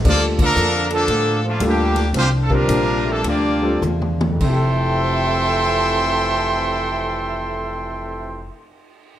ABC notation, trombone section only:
X:1
M:4/4
L:1/16
Q:"Swing" 1/4=100
K:F
V:1 name="Trombone section" clef=bass
[F,B,D]2 [D,F,B,]4 [D,F,A]4 [B,,D,F,]2 [B,,D,G,]3 z | [F,G,C]2 [F,G,B,]4 A,2 [G,B,D]4 z4 | [F,,C,E,A,]16- | [F,,C,E,A,]16 |]